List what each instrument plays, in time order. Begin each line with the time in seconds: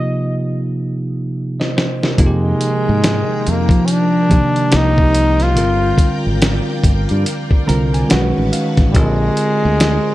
Already playing: tine electric piano C3 F3 A#3 D#4 F4 G4, flugelhorn D#5
1.60 tine electric piano C5 D#5, snare
1.77 tine electric piano C5, snare
2.03 tine electric piano G4 A#4, snare
2.18 fingered electric bass F2, tine electric piano C3 F3 A#3 D#4 F4, string machine D#3 G#3 A#4 G5, kick, closed hi-hat
2.24 flugelhorn G#3, tine electric piano G4
2.61 closed hi-hat
2.89 fingered electric bass G#2
3.04 snare, closed hi-hat
3.47 fingered electric bass F2, flugelhorn A#3, closed hi-hat
3.69 fingered electric bass F3, kick, closed hi-hat
3.85 flugelhorn C#4, closed hi-hat
3.91 flugelhorn D4
4.29 tine electric piano C3 D#3 F3 A#3 G4, kick, closed hi-hat
4.56 closed hi-hat
4.70 fingered electric bass C2, tine electric piano C3 F3 A#3 D#4 G4, string machine D#4 C5 G5, snare, closed hi-hat
4.76 flugelhorn D#4
4.98 kick
5.15 closed hi-hat
5.40 flugelhorn F4, snare, closed hi-hat
5.55 fingered electric bass G1, tine electric piano D3 G3 C4 F4 A#4, string machine F4 D5, closed hi-hat
5.98 kick, closed hi-hat
6.27 fingered electric bass G#1
6.42 snare, closed hi-hat
6.84 fingered electric bass G1, kick, closed hi-hat
7.09 fingered electric bass G2, closed hi-hat
7.26 closed hi-hat
7.51 kick
7.67 fingered electric bass C2, tine electric piano D3 G3 C4 F4 A#4 A#5, closed hi-hat
7.94 tine electric piano G#5, closed hi-hat
8.09 fingered electric bass B1, tine electric piano D#3 G#3 C#4 F#4 B4 F#5, string machine D#4 B4 C#5 A5, snare, closed hi-hat
8.38 fingered electric bass A1
8.53 tine electric piano F5, closed hi-hat
8.77 fingered electric bass A1, kick, snare, closed hi-hat
8.92 fingered electric bass A#1, tine electric piano D3 C4 G4, flugelhorn G3, string machine G#3 C5 D5 A#5, kick, closed hi-hat
8.96 flugelhorn G#3, tine electric piano F4 A#4
9.37 closed hi-hat
9.65 fingered electric bass D2
9.80 snare, closed hi-hat